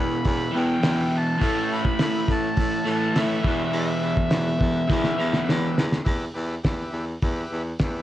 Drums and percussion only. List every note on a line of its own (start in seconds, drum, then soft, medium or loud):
0.24 kick loud
0.24 open hi-hat medium
0.83 snare loud
0.83 open hi-hat medium
1.42 kick loud
1.42 open hi-hat medium
1.85 kick medium
1.99 snare loud
1.99 open hi-hat medium
2.28 kick medium
2.57 kick loud
2.57 open hi-hat medium
3.15 snare loud
3.15 open hi-hat medium
3.44 kick loud
3.73 open hi-hat medium
4.17 kick medium
4.30 snare loud
4.30 open hi-hat medium
4.61 kick medium
4.89 kick loud
4.89 snare medium
5.04 snare medium
5.33 snare medium
5.49 snare medium
5.78 snare loud
5.92 snare medium
6.06 kick loud
6.06 open hi-hat medium
6.64 kick loud
6.64 snare loud
6.64 open hi-hat medium
7.22 kick loud
7.22 open hi-hat medium
7.79 kick loud
7.79 snare loud
7.79 open hi-hat medium